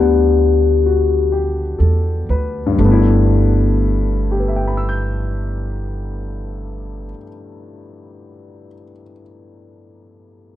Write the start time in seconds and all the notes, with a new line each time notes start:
Already playing: D2 G3 A3 B3 D4 E4 G4
0.00 F#5
0.86 F#4
1.32 G4
1.78 E2 A4
2.29 D2 B4
2.66 G2
2.73 G3
2.78 G1 A3
2.85 B3
2.91 E4
4.31 G4
4.40 B4
4.48 E5
4.56 G5
4.67 B5
4.77 E6
4.89 G6